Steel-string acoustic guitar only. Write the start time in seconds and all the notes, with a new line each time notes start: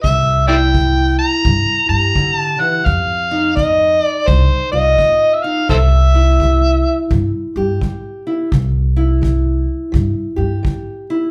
0.03 C3
0.48 E4
0.75 G3
1.45 C3
1.90 G4
2.16 D3
2.59 E3
2.86 F3
3.31 D#4
3.56 A3
4.28 C3
4.73 F4
4.98 A3
5.44 D#4
5.70 C3
6.14 E4
6.41 G3
7.11 C3
7.57 G4
7.82 G3
8.27 E4
8.53 C3
8.97 E4
9.22 G3
9.92 C3
10.36 G4
10.63 G3
11.10 E4